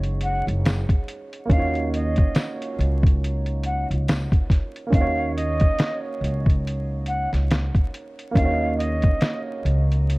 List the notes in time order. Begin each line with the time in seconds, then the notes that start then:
Already playing: F#1 G#3 C#4 D#4 F#4 C#5
0.03 closed hi-hat
0.21 F#5, closed hi-hat
0.47 F#1, closed hi-hat
0.65 snare, closed hi-hat, tambourine
0.89 kick, closed hi-hat
1.08 closed hi-hat
1.33 closed hi-hat
1.45 A#3 C#4
1.50 D#2 D#4 F5, kick, closed hi-hat
1.56 F4 C#5
1.62 F#4
1.75 closed hi-hat
1.94 D#5, closed hi-hat
2.16 kick, closed hi-hat
2.35 snare, closed hi-hat, tambourine
2.62 closed hi-hat
2.79 C#2, closed hi-hat
3.03 kick, closed hi-hat
3.24 closed hi-hat
3.46 closed hi-hat
3.63 F#5, closed hi-hat
3.91 C#2, closed hi-hat
4.08 snare, closed hi-hat, tambourine
4.32 kick, closed hi-hat
4.50 kick, snare, closed hi-hat
4.76 closed hi-hat
4.87 A#3 C#4
4.92 D#2 D#4 F5, kick, closed hi-hat
4.97 F#4 C#5
5.36 D#5, closed hi-hat
5.60 kick, closed hi-hat
5.79 snare, closed hi-hat
6.21 C#2, closed hi-hat
6.46 kick, closed hi-hat
6.67 closed hi-hat
7.06 F#5, closed hi-hat
7.33 C#2, snare, closed hi-hat
7.51 snare, closed hi-hat
7.75 kick, closed hi-hat
7.94 closed hi-hat
8.19 closed hi-hat
8.31 A#3 C#4
8.35 D#2 D#4 F5, kick, closed hi-hat
8.41 F#4 C#5
8.51 D#5
8.78 D#5, closed hi-hat
9.02 kick, closed hi-hat
9.21 snare, closed hi-hat
9.65 C#2, closed hi-hat
9.92 closed hi-hat
10.10 closed hi-hat